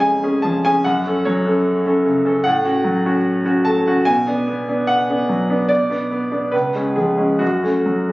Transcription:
Already playing: F2 G#3 C#4 G#4 B5
0.00 G#5
0.23 C#4 G#4
0.42 F3 A5
0.65 C#4 G#4 G#5
0.84 F#2 F#5
1.06 C#4 A4
1.25 F#3 C#5
1.46 C#4 A4
1.86 C#4 A4
2.05 C#3
2.25 C#4 A4
2.44 A2 F#5
2.65 C#4 F#4
2.84 F#3
3.05 C#4 F#4
3.46 C#4 F#4
3.65 A3 A5
3.87 C#4 F#4
4.05 B2 G#5
4.27 B3 D4
4.47 B3
4.69 B3 D4
4.87 F#5
5.10 B3 D4
5.29 F#3
5.50 B3 D4
5.69 B2 D5
5.90 B3 D4
6.11 B3
6.32 B3 D4
6.52 C#2 B4
6.75 G#3 C#4
6.96 F3 G#4
7.17 G#3 C#4
7.39 F#2 F#4
7.63 A3 C#4
7.86 F#3

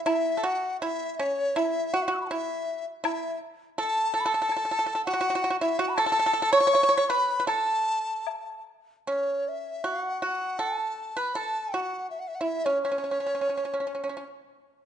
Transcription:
0.04 E4 E5, high woodblock
0.37 A4
0.43 F#4 F#5
0.81 E4 E5
1.19 C#4 C#5
1.56 E4 E5, high woodblock
1.94 F#4 F#5
2.02 E5 F#5
2.08 F#4
2.12 E6 F#6
2.17 B5 C#6
2.25 F#5 A5
2.30 E4 E5
3.04 E4 E5, high woodblock
3.78 A4 A5
4.14 A4 A5
4.20 B5
4.26 A4 A5
4.34 A4
4.42 A4
4.49 A4, high woodblock
4.57 A4
4.65 A4
4.71 A4
4.79 A4
4.86 A4
4.95 A4
5.05 F#4 F#5
5.13 F#4
5.21 F#4
5.30 F#4
5.35 F#4
5.44 F#4
5.50 F#4
5.61 E4 E5
5.79 F#4 F#5
5.89 B5
5.95 A4 A5, high woodblock
6.06 A4
6.12 A4
6.19 A4
6.26 A4
6.33 A4
6.42 A4
6.53 C#5 C#6
6.60 C#5
6.67 C#5
6.73 C#5, low woodblock
6.83 C#5
6.89 C#5
6.97 C#5
7.09 B4 B5
7.40 B4
7.47 A4 A5, high woodblock
8.27 high woodblock, low woodblock
9.07 C#4 C#5
9.48 E5
9.84 F#4
9.89 F#5
10.22 F#4 F#5
10.59 A4 A5
11.17 B4 B5
11.35 A4 A5
11.74 F#4 F#5
12.10 E5
12.20 F#5
12.28 E5
12.35 F#5
12.41 E4 E5
12.65 C#4 C#5
12.82 C#4 C#5
12.92 C#4
12.98 C#4
13.04 C#4
13.11 C#4
13.20 C#4
13.26 C#4
13.35 C#4
13.41 C#4
13.49 C#4
13.57 C#4
13.65 C#4
13.74 C#4
13.80 C#4
13.87 C#4
13.95 C#4
14.04 C#4
14.09 C#4
14.17 C#4

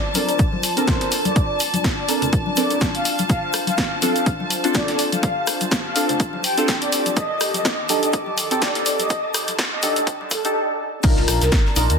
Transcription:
Already playing: D4 F4 C5 A5
0.14 F1 C4 D4 A4 A#4 D5, open hi-hat, high conga, shaker
0.28 D2, closed hi-hat, shaker
0.39 kick, closed hi-hat, shaker
0.53 F2, high conga
0.63 open hi-hat, shaker
0.77 A#1 C4 D4 A4 A#4, closed hi-hat, shaker
0.87 C5, kick, snare, closed hi-hat, high conga, low conga, shaker
1.01 snare, closed hi-hat
1.12 A#1, open hi-hat, shaker
1.25 D5, closed hi-hat, high conga, shaker
1.36 D5, kick, closed hi-hat, shaker
1.60 F1, open hi-hat, shaker
1.73 A#1, closed hi-hat, high conga, shaker
1.84 kick, snare, closed hi-hat, shaker
1.98 D5
2.08 F1 C4 D4 A4 A#4, open hi-hat, shaker
2.22 D2, closed hi-hat, low conga, shaker
2.33 kick, closed hi-hat, shaker
2.46 high conga
2.57 F1 C4 D4 A4 A#4 D5, open hi-hat, shaker
2.70 A#2, closed hi-hat, shaker
2.81 kick, snare, closed hi-hat, high conga, shaker
2.95 F5, closed hi-hat
3.05 open hi-hat, shaker
3.18 closed hi-hat, high conga, shaker
3.29 D2 C5 F5, kick, closed hi-hat, shaker
3.53 C2, cross-stick, open hi-hat, shaker
3.67 D2 F5, closed hi-hat, high conga, shaker
3.77 kick, snare, closed hi-hat, shaker
4.02 C4 D4 F4 A4 F5, open hi-hat, high conga, shaker
4.16 F2, closed hi-hat, shaker
4.26 kick, closed hi-hat, shaker
4.40 C2, high conga
4.50 open hi-hat, shaker
4.64 D2 C4 D4 F4 A4, closed hi-hat, shaker
4.74 D5, kick, snare, closed hi-hat, high conga, low conga, shaker
4.88 snare, closed hi-hat
4.99 D2, open hi-hat, shaker
5.12 F5, closed hi-hat, high conga, shaker
5.23 G4, kick, closed hi-hat, shaker
5.47 C2, cross-stick, open hi-hat, shaker
5.60 D2, closed hi-hat, high conga, shaker
5.71 kick, snare, closed hi-hat, shaker
5.85 F5
5.95 C2 C4 D4 F4 A4, open hi-hat, shaker
6.09 F2, closed hi-hat, low conga, shaker
6.20 kick, closed hi-hat, shaker
6.33 A2, high conga
6.44 G5, open hi-hat, shaker
6.57 D2 C4 D4 F4 A4, closed hi-hat, shaker
6.68 kick, snare, closed hi-hat, high conga, shaker
6.82 D5, closed hi-hat
6.92 D2, open hi-hat, shaker
7.06 D2, closed hi-hat, high conga, shaker
7.17 F2 D#3 A4 D#5 D6, kick, closed hi-hat, shaker
7.41 D#2, cross-stick, open hi-hat, shaker
7.54 F2 D#5, closed hi-hat, high conga, shaker
7.65 kick, snare, closed hi-hat, shaker
7.89 D#2 D4 D#4 G4 A4 D#5, open hi-hat, high conga, shaker
8.03 A2, closed hi-hat, shaker
8.13 kick, closed hi-hat, shaker
8.26 D#2, high conga
8.38 open hi-hat, shaker
8.51 F2 C4 D#4 G4 A4, closed hi-hat, shaker
8.62 D5, kick, snare, closed hi-hat, high conga, low conga, shaker
8.75 snare, closed hi-hat
8.86 F2, open hi-hat, shaker
8.99 D#5, closed hi-hat, high conga, shaker
9.10 kick, closed hi-hat, shaker
9.34 D#2, cross-stick, open hi-hat, shaker
9.48 F2, closed hi-hat, high conga, shaker
9.59 kick, snare, closed hi-hat, shaker
9.72 D#5
9.83 D#2 D4 D#4 G4 A4, open hi-hat, high conga, shaker
9.96 A2, closed hi-hat, low conga, shaker
10.07 kick, closed hi-hat, shaker
10.21 D3, high conga
10.31 F2 A4, kick, open hi-hat, low conga, shaker
10.44 D4 D#4 G4 A4, closed hi-hat, shaker
11.03 C2 C4 D4 D#4 F4 A#4 D5 A5, kick, closed hi-hat, crash, shaker
11.17 snare
11.28 A#1, cross-stick, closed hi-hat, open hi-hat, shaker
11.41 C2 A#4, snare, closed hi-hat, shaker
11.52 kick, snare, closed hi-hat, shaker
11.66 snare
11.76 A#1 D4 D#4 F4 A#4, closed hi-hat, open hi-hat, shaker
11.90 D#2, closed hi-hat, shaker

